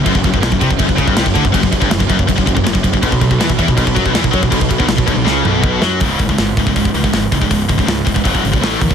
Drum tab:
CC |x-x-x-x-x-x-x-x-|x-x-x-x-x-x-x-x-|x-x-x-x-x-x-x-x-|x-x-x-x---------|
HH |----------------|----------------|----------------|----------------|
SD |----o-------o---|----o-------o---|----o-------o---|----o---o-----o-|
T2 |----------------|----------------|----------------|----------o-----|
BD |oooo-ooooooo-ooo|oooo-ooooooo-ooo|oooo-ooooooo-ooo|oooo-oo-----o---|

CC |----------------|----------------|
HH |o-o-o-o-o-o-o-o-|o-o-o-o-o-o-o-o-|
SD |----o-------o---|----o-------o---|
T2 |----------------|----------------|
BD |o-oo--oooo-o--oo|o-oo--oooo-o--oo|